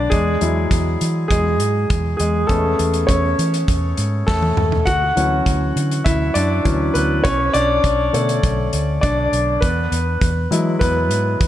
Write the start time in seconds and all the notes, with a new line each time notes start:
Already playing: D3 A3 D4 C#5 D5
0.10 E2 G#3 G#4, kick, closed hi-hat
0.41 E2 F#3 G#3 E4, closed hi-hat
0.71 E2, kick, closed hi-hat
1.01 E3, closed hi-hat
1.28 E2 G#3 G#4, kick, closed hi-hat
1.60 G#2, closed hi-hat
1.90 E2, kick, closed hi-hat
2.17 E2 G#3 G#4, closed hi-hat
2.47 E2 A3 B3 C#4 G#4 A4, kick, closed hi-hat
2.79 E2, closed hi-hat
2.94 closed hi-hat
3.07 E2 C#4 C#5, kick, closed hi-hat
3.39 E3, closed hi-hat
3.54 closed hi-hat
3.68 E2, kick, closed hi-hat
3.97 G#2, closed hi-hat
4.27 E2 A3 A4, kick, snare
4.42 high tom
4.57 E2, mid tom
4.72 floor tom
4.86 D2 F#4 F#5, kick, closed hi-hat
5.16 D2 E3 F#3 C#4, closed hi-hat
5.46 D2, kick, closed hi-hat
5.76 D3, closed hi-hat
5.91 closed hi-hat
6.04 D2 E4 E5, kick, closed hi-hat
6.34 F#2 D4 D5, closed hi-hat
6.64 D2 E3 F#3 C#4, kick, closed hi-hat
6.94 D2 B3 B4, closed hi-hat
7.24 B1 C#4 C#5, kick, closed hi-hat
7.54 B1 D4 D5, closed hi-hat
7.84 B1, kick, closed hi-hat
8.13 B2 D3 A3 C#5, closed hi-hat
8.29 closed hi-hat
8.43 B1, kick, closed hi-hat
8.73 D2, closed hi-hat
9.01 B1 D4 D5, kick, closed hi-hat
9.32 B1, closed hi-hat
9.61 E2 B3 B4, kick, closed hi-hat
9.92 E2, closed hi-hat
10.21 E2, kick, closed hi-hat
10.51 E3 F#3 G#3 E4, closed hi-hat
10.79 E2 B3 B4, kick, closed hi-hat
11.11 G#2, closed hi-hat
11.41 E2, kick, closed hi-hat